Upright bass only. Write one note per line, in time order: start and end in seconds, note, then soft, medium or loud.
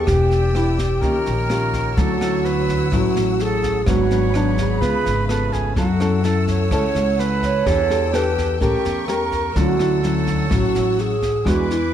0.08 0.99 E1 loud
1.03 1.14 D#2 medium
1.27 1.94 A#1 medium
1.97 2.88 D2 loud
2.92 3.03 A1 medium
3.16 3.83 A1 medium
3.87 4.78 G#1 loud
4.82 4.93 C#2 medium
5.06 5.73 G#1 medium
5.77 6.68 F#2 loud
6.71 6.83 C#2 medium
6.95 7.62 C#2 medium
7.67 8.57 E2 loud
8.61 8.72 A1 medium
8.86 9.52 E2 medium
9.56 10.47 D2 loud
10.51 10.62 A1 medium
10.76 11.43 A1 medium
11.46 11.94 E2 loud